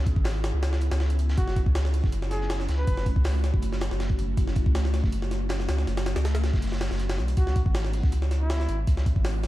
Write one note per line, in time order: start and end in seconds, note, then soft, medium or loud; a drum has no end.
0.00 0.15 C#2 loud
0.00 1.34 B3 medium
0.00 7.34 C#4 medium
0.00 4.34 E4 medium
0.00 1.34 G#4 medium
0.06 kick loud
0.06 closed hi-hat medium
0.16 0.52 G#1 loud
0.16 kick loud
0.25 snare loud
0.25 closed hi-hat medium
0.25 open hi-hat medium
0.36 closed hi-hat soft
0.44 snare loud
0.44 closed hi-hat medium
0.54 0.90 C#2 medium
0.63 snare loud
0.63 closed hi-hat medium
0.72 snare medium
0.72 snare soft
0.81 closed hi-hat medium
0.91 1.36 C#2 loud
0.91 snare loud
0.91 closed hi-hat medium
1.00 snare soft
1.00 snare medium
1.00 closed hi-hat medium
1.10 closed hi-hat soft
1.10 closed hi-hat medium
1.19 closed hi-hat medium
1.29 snare loud
1.29 closed hi-hat medium
1.37 1.65 F#1 loud
1.37 7.34 A3 medium
1.37 1.60 F#4 medium
1.37 7.34 F#4 medium
1.37 kick loud
1.37 closed hi-hat medium
1.48 snare soft
1.56 kick loud
1.56 closed hi-hat medium
1.66 2.02 C#2 loud
1.66 kick loud
1.75 snare loud
1.75 closed hi-hat medium
1.85 snare medium
1.93 closed hi-hat medium
1.93 open hi-hat medium
2.04 2.67 F#1 medium
2.04 kick loud
2.04 snare soft
2.12 closed hi-hat medium
2.22 snare soft
2.31 2.54 G#4 medium
2.31 snare soft
2.31 closed hi-hat medium
2.41 snare soft
2.50 snare loud
2.50 closed hi-hat medium
2.60 snare soft
2.60 closed hi-hat soft
2.68 2.86 C#2 medium
2.68 snare loud
2.68 closed hi-hat medium
2.78 3.06 B4 medium
2.87 3.15 F#1 loud
2.87 kick loud
2.87 closed hi-hat medium
2.87 open hi-hat medium
2.97 snare soft
3.06 kick medium
3.06 closed hi-hat medium
3.16 3.52 C#2 loud
3.16 kick medium
3.24 snare loud
3.24 closed hi-hat medium
3.24 open hi-hat medium
3.35 closed hi-hat soft
3.44 snare medium
3.44 closed hi-hat medium
3.54 3.90 F#1 medium
3.54 kick loud
3.62 closed hi-hat medium
3.72 snare medium
3.72 snare soft
3.81 snare loud
3.81 closed hi-hat medium
3.91 4.36 F#1 loud
3.91 snare medium
4.00 snare loud
4.00 snare soft
4.00 closed hi-hat medium
4.00 closed hi-hat loud
4.10 kick medium
4.10 closed hi-hat soft
4.19 closed hi-hat medium
4.37 4.65 F#1 loud
4.37 7.35 D#4 medium
4.37 kick loud
4.37 closed hi-hat medium
4.48 snare soft
4.55 kick loud
4.55 closed hi-hat medium
4.66 5.02 C#2 loud
4.66 kick loud
4.75 snare loud
4.75 closed hi-hat medium
4.85 snare medium
4.94 snare medium
4.94 closed hi-hat medium
4.94 open hi-hat medium
5.04 5.67 F#1 medium
5.04 kick medium
5.04 snare soft
5.12 closed hi-hat medium
5.22 snare soft
5.31 snare soft
5.31 closed hi-hat medium
5.49 snare loud
5.49 closed hi-hat medium
5.59 snare soft
5.59 closed hi-hat soft
5.69 5.86 C#2 medium
5.69 snare loud
5.69 closed hi-hat medium
5.78 snare soft
5.87 6.15 F#1 loud
5.87 snare soft
5.87 closed hi-hat medium
5.97 snare soft
5.97 snare loud
5.97 closed hi-hat medium
6.06 snare loud
6.06 closed hi-hat medium
6.16 6.52 C#2 loud
6.16 snare loud
6.16 closed hi-hat medium
6.25 snare loud
6.25 closed hi-hat medium
6.35 snare loud
6.35 closed hi-hat medium
6.44 snare medium
6.44 snare loud
6.44 closed hi-hat medium
6.54 6.90 F#1 medium
6.54 kick loud
6.54 snare loud
6.54 closed hi-hat medium
6.62 snare medium
6.62 closed hi-hat medium
6.67 snare medium
6.67 closed hi-hat medium
6.72 snare medium
6.72 snare soft
6.72 closed hi-hat medium
6.77 snare medium
6.77 closed hi-hat medium
6.81 snare loud
6.81 snare medium
6.81 closed hi-hat medium
6.86 snare medium
6.86 closed hi-hat medium
6.91 7.20 F#1 loud
6.91 snare medium
6.91 snare soft
6.91 closed hi-hat medium
6.95 snare medium
6.95 closed hi-hat medium
7.00 closed hi-hat medium
7.09 snare loud
7.09 closed hi-hat medium
7.18 7.36 B1 medium
7.18 snare soft
7.18 closed hi-hat soft
7.28 closed hi-hat medium
7.37 7.64 C#2 loud
7.37 9.47 G#3 medium
7.37 9.47 B3 medium
7.37 9.47 C#4 medium
7.37 9.47 E4 medium
7.37 7.60 F#4 medium
7.37 kick loud
7.37 closed hi-hat medium
7.47 snare soft
7.56 kick loud
7.56 closed hi-hat medium
7.66 8.02 G#1 loud
7.66 kick loud
7.75 snare loud
7.75 closed hi-hat medium
7.85 snare medium
7.93 closed hi-hat medium
7.93 open hi-hat medium
8.03 8.67 C#2 medium
8.03 kick loud
8.03 snare soft
8.12 closed hi-hat medium
8.12 closed hi-hat loud
8.22 snare soft
8.31 snare soft
8.31 closed hi-hat medium
8.41 8.79 E4 loud
8.50 snare loud
8.50 closed hi-hat medium
8.60 snare soft
8.60 closed hi-hat soft
8.69 8.86 G#1 medium
8.69 closed hi-hat medium
8.87 9.15 C#2 loud
8.87 kick loud
8.87 closed hi-hat medium
8.97 snare soft
9.06 kick medium
9.06 closed hi-hat medium
9.16 9.47 G#1 loud
9.16 kick medium
9.25 snare loud
9.25 closed hi-hat medium
9.25 open hi-hat medium
9.43 snare medium
9.43 closed hi-hat medium